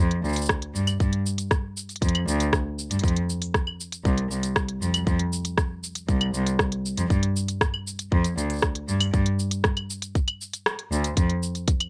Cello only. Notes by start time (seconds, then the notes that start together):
0.00 F2
0.24 D2
0.75 G2
1.00 G2
2.02 F2
2.27 D2
2.91 G2
3.04 F2
4.05 C2
4.31 C2
4.81 F2
5.07 F2
6.08 C2
6.34 C2
6.98 F2
7.10 G2
8.12 F2
8.38 D2
8.88 G2
9.14 G2
10.91 D2
11.17 F2